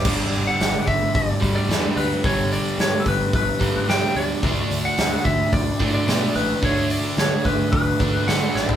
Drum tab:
CC |x---------------|----------------|----------------|----------------|
HH |--o-o-o-o-o-o-o-|o-o-o-o-o-o-o-o-|o-o-o-o-o-o-o-o-|o-o-o-o-o-o-o---|
SD |----o-------o---|----o-------o---|----o-------o---|----o-------o-o-|
FT |----------------|----------------|----------------|---------------o|
BD |o-----o-o-o-----|o-----o-o-o-----|o-----o-o-o-----|o-----o-o-o-----|